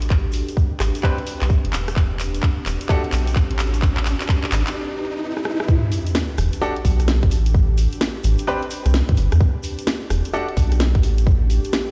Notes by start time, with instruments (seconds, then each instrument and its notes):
Already playing: analog synth bass A1, ambient pad C4 D4 G4 B4, riser
0.02 closed hi-hat, shaker
0.10 kick, clap, shaker
0.32 open hi-hat, shaker
0.49 closed hi-hat, shaker
0.57 kick, shaker
0.80 analog synth bass A1, cross-stick, clap, open hi-hat, shaker
0.95 closed hi-hat, shaker
1.03 grand piano C4 D4 G4 B4, kick, clap
1.18 closed hi-hat
1.27 open hi-hat, shaker
1.41 analog synth bass C2, cross-stick, clap, closed hi-hat, shaker
1.50 kick, shaker
1.65 analog synth bass G1, closed hi-hat
1.73 analog synth bass E1, clap, open hi-hat, shaker
1.88 cross-stick, closed hi-hat, shaker
1.96 ambient pad F#4 G4 A4, kick, clap, shaker
2.20 clap, open hi-hat, shaker
2.35 closed hi-hat, shaker
2.43 kick, clap, shaker
2.66 analog synth bass E1, clap, open hi-hat, shaker
2.81 closed hi-hat, shaker
2.89 grand piano D4 F#4 G4 A4, kick, clap, shaker
3.04 closed hi-hat
3.12 analog synth bass B1, clap, open hi-hat, shaker
3.27 closed hi-hat, shaker
3.36 kick, clap, shaker
3.51 analog synth bass A1, closed hi-hat
3.59 ambient pad C4 B4, clap, open hi-hat, shaker
3.74 closed hi-hat, shaker
3.82 kick, clap, shaker
3.97 clap
4.06 clap, open hi-hat, shaker
4.21 clap, closed hi-hat, shaker
4.29 kick, clap, shaker
4.44 clap
4.52 analog synth bass A1, clap, open hi-hat, shaker
4.67 clap, closed hi-hat, shaker
5.37 cross-stick
5.45 cross-stick
5.60 cross-stick
5.68 ambient pad D4 F#4 G4 A4, kick, sub drop, shaker
5.92 open hi-hat, shaker
6.07 closed hi-hat, shaker
6.15 snare, shaker
6.38 analog synth bass E1, cross-stick, open hi-hat, shaker
6.53 closed hi-hat, shaker
6.61 grand piano D4 F#4 G4 A4, shaker
6.76 closed hi-hat
6.85 analog synth bass B1, kick, open hi-hat, shaker
7.00 cross-stick, closed hi-hat, shaker
7.08 snare, shaker
7.23 analog synth bass A1, kick, closed hi-hat
7.31 ambient pad C4 B4, open hi-hat, shaker
7.46 closed hi-hat, shaker
7.54 kick
7.77 open hi-hat, shaker
7.93 closed hi-hat, shaker
8.01 snare, shaker
8.24 analog synth bass A1, open hi-hat, shaker
8.38 closed hi-hat, shaker
8.47 grand piano C4 D4 G4 B4, shaker
8.62 closed hi-hat
8.70 open hi-hat, shaker
8.86 analog synth bass C2, cross-stick, closed hi-hat, shaker
8.94 snare, shaker
9.09 analog synth bass A2, kick, closed hi-hat
9.17 analog synth bass G1, open hi-hat, shaker
9.32 analog synth bass E2, cross-stick, closed hi-hat, shaker
9.40 ambient pad F#4 G4 A4, kick, shaker
9.63 open hi-hat, shaker
9.79 closed hi-hat, shaker
9.87 snare, shaker
10.10 analog synth bass E1, cross-stick, open hi-hat, shaker
10.25 closed hi-hat, shaker
10.33 grand piano D4 F#4 G4 A4, shaker
10.49 closed hi-hat
10.57 analog synth bass B1, kick, open hi-hat, shaker
10.72 cross-stick, closed hi-hat, shaker
10.80 snare, shaker
10.95 analog synth bass A1, kick, closed hi-hat
11.03 ambient pad C4 B4, open hi-hat, shaker
11.18 closed hi-hat, shaker
11.27 kick, shaker
11.50 open hi-hat, shaker
11.64 closed hi-hat, shaker
11.72 snare, shaker